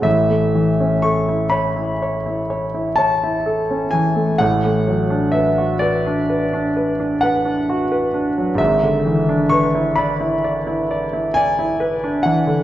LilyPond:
\new Staff \with { instrumentName = "Grand piano" } { \time 9/8 \key a \major \tempo 4. = 43 << { e''4 cis'''8 b''4. a''4 gis''8 | fis''4 e''8 d''4. fis''4. | e''4 cis'''8 b''4. gis''4 fis''8 | } \\ { <a,, a,>16 a16 e16 cis'16 a'16 e'16 cis''16 e'16 cis''16 e'16 cis''16 e'16 cis''16 e'16 a'16 cis'16 e16 a16 | <a,, a,>16 a16 fis16 d'16 b'16 fis'16 b'16 d'16 b'16 d'16 b'16 d'16 b'16 d'16 fis'16 b'16 d'16 fis16 | <gis,, gis,>16 d16 e16 d'16 b'16 e'16 d''16 e'16 d''16 e'16 d''16 e'16 d''16 e'16 b'16 d'16 e16 d16 | } >> }